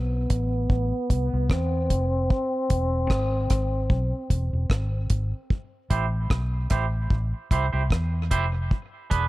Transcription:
Already playing: B1 B3
0.30 A1, kick, closed hi-hat
0.70 A1, kick
1.10 C2, kick, closed hi-hat
1.33 C2
1.50 E2 C4, kick, cross-stick
1.90 F1, kick, closed hi-hat
2.30 kick
2.70 E1, kick, closed hi-hat
3.10 G#1, kick, cross-stick
3.50 G#1, kick, cross-stick, closed hi-hat
3.90 B1, kick
4.30 E1, kick, closed hi-hat
4.53 E1
4.70 G#1, kick, cross-stick
5.10 G#1, kick, closed hi-hat
5.50 kick
5.90 A1 E4 G4 C5, kick, closed hi-hat
6.30 B1, kick, cross-stick
6.70 A1 E4 G4 C5, kick, cross-stick, closed hi-hat
7.10 A1, kick
7.51 C2 E4 G4 C5, kick, closed hi-hat
7.73 C2 E4 G4 C5
7.90 E2, kick, cross-stick
8.31 F1 E4 G4 C5, kick, closed hi-hat
8.53 muted clean electric guitar stroke
8.71 kick
9.10 E1 D4 G#4 B4, kick, closed hi-hat

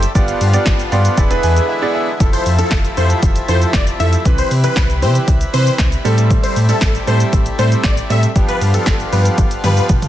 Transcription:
Already playing: G3 A3 E5
0.03 closed hi-hat, shaker
0.15 G1 D3 F3 G3 B3 F4 G4 D5, kick, closed hi-hat, shaker
0.28 closed hi-hat, shaker
0.41 G2, open hi-hat, shaker
0.53 B3 F4 G4 D5, closed hi-hat, shaker
0.66 G1, kick, snare, clap, closed hi-hat, shaker
0.80 closed hi-hat, shaker
0.92 G2 B3 F4 G4 D5 C6, open hi-hat, shaker
1.05 closed hi-hat, shaker
1.17 E1 E3 G#3 B3 E4 G#4 D5 B5, kick, closed hi-hat, shaker
1.30 E1 B3 E4 G#4 B4, closed hi-hat, shaker
1.43 E2 G#5, open hi-hat, shaker
1.57 closed hi-hat, shaker
1.69 E5
1.82 B3 E4 G#4 D5
1.95 E5
2.20 F1 C3 F3 A3 E4 A4, kick, closed hi-hat, shaker
2.33 C5, closed hi-hat, shaker
2.46 F2, open hi-hat, shaker
2.58 F3 E4 A4, closed hi-hat, shaker
2.71 F1, kick, snare, clap, closed hi-hat, shaker
2.85 closed hi-hat, shaker
2.97 F2 F3 E4 A4 C5, open hi-hat, shaker
3.10 closed hi-hat, shaker
3.23 F1, kick, closed hi-hat, shaker
3.36 closed hi-hat, shaker
3.48 F2 F3 E4 A4 C5, open hi-hat, shaker
3.62 closed hi-hat, shaker
3.73 F1 D5, kick, snare, clap, closed hi-hat, shaker
3.87 closed hi-hat, shaker
3.99 F2 F3 E4 A4 E5, open hi-hat, shaker
4.13 closed hi-hat, shaker
4.25 C2 E3 G3 C4 B4, kick, closed hi-hat, shaker
4.38 C5, closed hi-hat, shaker
4.51 C3, open hi-hat, shaker
4.64 E3 C4 B4, closed hi-hat, shaker
4.76 C2, kick, snare, clap, closed hi-hat, shaker
4.90 closed hi-hat, shaker
5.02 C3 E3 C4 G4 C5, open hi-hat, shaker
5.15 closed hi-hat, shaker
5.28 C2, kick, closed hi-hat, shaker
5.41 closed hi-hat, shaker
5.53 C3 E3 C4 B4 C5, open hi-hat, shaker
5.67 closed hi-hat, shaker
5.78 C2, kick, snare, clap, closed hi-hat, shaker
5.92 closed hi-hat, shaker
6.05 A2 C3 G3 A3 C4 A4, open hi-hat, shaker
6.18 closed hi-hat, shaker
6.31 kick, closed hi-hat, shaker
6.43 C5, closed hi-hat, shaker
6.56 A2, open hi-hat, shaker
6.69 G3 C4 A4, closed hi-hat, shaker
6.81 A1, kick, snare, clap, closed hi-hat, shaker
6.95 closed hi-hat, shaker
7.07 A2 G3 C4 A4 C5, open hi-hat, shaker
7.20 closed hi-hat, shaker
7.33 A1, kick, closed hi-hat, shaker
7.46 closed hi-hat, shaker
7.59 A2 G3 C4 A4 C5, open hi-hat, shaker
7.72 closed hi-hat, shaker
7.83 A1 D5, kick, snare, clap, closed hi-hat, shaker
7.97 closed hi-hat, shaker
8.10 A2 G3 C4 A4 E5, open hi-hat, shaker
8.23 closed hi-hat, shaker
8.36 G1 D3 F3 G3 B3 F4 G4, kick, closed hi-hat, shaker
8.49 B4, closed hi-hat, shaker
8.61 G2, open hi-hat, shaker
8.74 F3 B3 G4 A4, closed hi-hat, shaker
8.86 G1, kick, snare, clap, closed hi-hat, shaker
9.00 closed hi-hat, shaker
9.12 G2 F3 B3 G4 B4, open hi-hat, shaker
9.25 closed hi-hat, shaker
9.38 G1, kick, closed hi-hat, high tom, shaker
9.51 closed hi-hat, shaker
9.64 G2 F3 B3 G4 B4, open hi-hat, mid tom, shaker
9.77 closed hi-hat, shaker
9.89 G1, kick, closed hi-hat, mid tom, shaker
10.02 closed hi-hat, mid tom, shaker

